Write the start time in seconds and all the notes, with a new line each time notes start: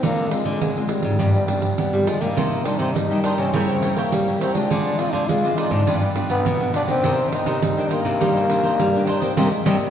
0.03 D3 G#3 A#3 C4 F4, pandeiro
0.18 pandeiro
0.31 G#3 C4 F4, pandeiro
0.45 D3, pandeiro
0.61 D3 G#3, pandeiro
0.76 G#3 C4 F4, pandeiro
0.89 G3, pandeiro
1.03 G#2, pandeiro
1.19 G2 F3 B3 D4, pandeiro
1.34 pandeiro
1.48 F3 B3 D4, pandeiro
1.62 pandeiro
1.78 D3 B3, pandeiro
1.93 F3 G3 B3 D4, pandeiro
2.07 F3 G#3, pandeiro
2.21 D3 G3 A#3 D#4, pandeiro
2.36 C3 D#4 A#4 C5 D#5, pandeiro
2.52 pandeiro
2.65 G3 A#3 D4 D#4 A#4 C5 D#5, pandeiro
2.79 C3 C4 D#4 A#4 C5 D#5, pandeiro
2.95 G2 G3 D#4, pandeiro
3.10 G3 A#3 D#4 A#4 C5 D#5, pandeiro
3.23 D4 D#4 A#4 C5 D#5, pandeiro
3.37 C3 C#4 C5 D#5, pandeiro
3.42 A#4
3.53 C#3 G3 A#3 E4 A#4 C#5 G5, pandeiro
3.69 C4 A#4 C#5 G5, pandeiro
3.83 G3 A#3 E4 A#4 C#5 G5, pandeiro
3.96 A#3 E4 A#4 C#5 G5, pandeiro
4.12 C#3 G3, pandeiro
4.28 G3 A#3 E4, pandeiro
4.41 C4 E4 A#4 C#5 G5, pandeiro
4.55 G#3 C4 D4 F4 A#4 C#5 G5, pandeiro
4.70 D3 F4 G#4 C5 D5, pandeiro
4.86 pandeiro
4.99 G#3 C4 F4 G#4 C5 D5, pandeiro
5.12 D3 D4 F4 G#4 C5 D5, pandeiro
5.29 D3 G#3 F4, pandeiro
5.43 G#3 C4 F4 G#4 C5 D5, pandeiro
5.57 D#4 F4 G#4 C5 D5, pandeiro
5.71 G#2 D4 G#4 C5 D5, pandeiro
5.87 G2 F3 B3 D4 F4 G4 B4 D5, pandeiro
6.02 G4 B4 D5, pandeiro
6.15 F3 B3 D4 F4 G4 B4 D5, pandeiro
6.30 B3 F4 G4 B4 D5, pandeiro
6.45 B2 D3, pandeiro
6.60 F3 B3 D4, pandeiro
6.74 D4 F4 G4 B4 D5, pandeiro
6.87 D#3 A#3 C4 D4 G4 B4 D5, pandeiro
7.03 C3 D#4 A#4 C5 D#5, pandeiro
7.19 pandeiro
7.31 D#3 A#3 D4 D#4 A#4 C5 D#5, pandeiro
7.46 C3 D#4 A#4 C5 D#5, pandeiro
7.62 G2 G3, pandeiro
7.77 D#3 A#3 D4 A#4 C5 D#5, pandeiro
7.90 A#3 D#4 A#4 C5 D#5, pandeiro
8.05 C3 A#4 C5 D#5, pandeiro
8.20 C3 D#3 G3 A#3 D4 D#4 A#4 C5 D#5, pandeiro
8.36 A#4 C5 D#5, pandeiro
8.49 D#3 A#3 D4 D#4 A#4 C5 D#5, pandeiro
8.63 D#4 A#4 C5 D#5, pandeiro
8.79 G2 G3, pandeiro
8.94 D#3 A#3 D4, pandeiro
9.06 D4 D#4 A#4 C5 D#5, pandeiro
9.20 D#3 A#3 C4 D4 A#4 C5 D#5, pandeiro
9.36 C3 G3 A#3 C4 A#4 C5 D#5, pandeiro
9.50 G#3
9.65 C3 G3 A#3 C4 A#4 C5 D#5, pandeiro